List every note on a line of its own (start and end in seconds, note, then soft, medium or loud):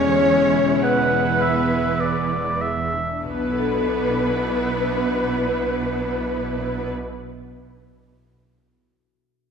0.00 2.92 E1 soft
0.00 2.91 E2 soft
0.00 3.35 D3 soft
0.00 3.29 E3 soft
0.00 2.91 G#3 soft
0.00 0.80 C#4 medium
0.00 0.85 C#4 medium
0.00 2.95 E4 soft
0.00 0.51 F#4 soft
0.00 0.54 B4 soft
0.00 0.81 C#5 medium
0.00 0.82 C#5 medium
0.00 1.61 F#5 soft
0.00 1.39 B5 medium
0.27 2.60 G#4 soft
0.55 2.29 B4 soft
0.82 2.61 B3 soft
0.82 2.61 B4 soft
0.82 1.97 D5 soft
0.82 1.43 F#5 medium
1.11 1.68 G#5 soft
1.41 2.02 E5 soft
1.41 5.31 B5 soft
1.69 3.28 G#5 soft
1.98 5.88 D5 soft
1.98 2.63 D5 soft
2.30 6.20 B4 soft
2.61 3.28 G#4 soft
2.61 3.24 E5 soft
2.92 3.36 D4 soft
3.23 6.90 B1 soft
3.23 6.89 B2 soft
3.23 7.14 B2 soft
3.23 6.90 B3 soft
3.23 6.89 D4 soft
3.23 6.89 E4 soft
3.23 6.90 B4 soft
3.30 6.97 B3 soft
3.37 7.04 D4 soft
3.44 7.11 E4 soft
3.51 7.18 A4 soft
3.59 7.25 E5 soft